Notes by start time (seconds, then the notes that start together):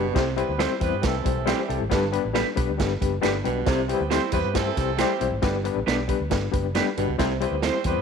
Already playing: F#1 B2 G3 B3 D4 B4
0.14 C2 C3 G3 C4 E4 G4 C5, kick, snare, closed hi-hat
0.36 G3 B3 C4 E4 G4 B4 C5, closed hi-hat
0.48 D2
0.58 G3 C4 E4 G4 C5, snare, closed hi-hat
0.80 E2 G3 B3 C4 E4 G4 B4 C5, kick, closed hi-hat
0.93 G2
1.02 C2 E3 G3 A3 C4 E4 G4 A4 B4, kick, snare, closed hi-hat
1.24 B1 G3 C4 E4 G4 C5, kick, closed hi-hat
1.46 E3 G3 C4 E4 G4 C5, snare, closed hi-hat
1.69 C2 G3 C4 E4 G4 A4, closed hi-hat
1.81 G#1
1.89 G1 G2 G3 B3 D4 G4 B4, kick, snare, closed hi-hat
2.11 G3 B3 D4 G4 B4, closed hi-hat
2.25 A1
2.34 G3 B3 D4 G4 B4, snare, closed hi-hat
2.56 B1 G3 B3 D4 G4 B4, kick, closed hi-hat
2.69 D2
2.78 G1 G3 B3 D4 G4 B4, kick, snare, closed hi-hat
3.01 F#1 G3 B3 D4 G4 B4, kick, closed hi-hat
3.21 G1 G3 B3 D4 G4 B4, snare, closed hi-hat
3.44 B1 B2 G3 B3 D4 G4 B4, closed hi-hat
3.66 C2 C3 G3 C4 E4 G4 C5, kick, snare, closed hi-hat
3.88 G3 B3 C4 E4 G4 B4 C5, closed hi-hat
4.00 D2
4.10 G3 C4 E4 G4 C5, snare, closed hi-hat
4.32 E2 G3 B3 C4 E4 G4 B4 C5, kick, closed hi-hat
4.44 G2
4.54 E3 G3 A3 C4 E4 G4 A4 C5, kick, snare, closed hi-hat
4.77 C2 G3 C4 E4 G4 C5, kick, snare, closed hi-hat
4.98 E3 G3 C4 E4 G4 C5, snare, closed hi-hat
5.21 B1 G3 C4 E4 G4 C5, closed hi-hat
5.32 G#1
5.42 G1 G2 G3 B3 D4 G4 B4, kick, snare, closed hi-hat
5.64 G3 B3 D4 G4 B4, closed hi-hat
5.76 A1
5.86 B1 G3 B3 D4 G4 B4 D5, snare, closed hi-hat
6.08 G3 B3 D4 G4 B4, kick, closed hi-hat
6.20 D2
6.30 G1 G3 B3 D4 G4 B4, kick, snare, closed hi-hat
6.52 F#1 G3 B3 D4 G4 B4, kick, closed hi-hat
6.75 G3 B3 D4 G4 B4, snare, closed hi-hat
6.97 G1 B2 G3 B3 D4 G4 B4, closed hi-hat
7.08 C#2
7.18 C2 C3 G3 C4 E4 G4 C5, kick, snare, closed hi-hat
7.41 G3 B3 C4 E4 G4 B4 C5, closed hi-hat
7.51 D2
7.62 G3 C4 E4 G4 C5, snare, closed hi-hat
7.84 E2 G3 B3 C4 E4 G4 B4 C5, kick, closed hi-hat
7.96 G2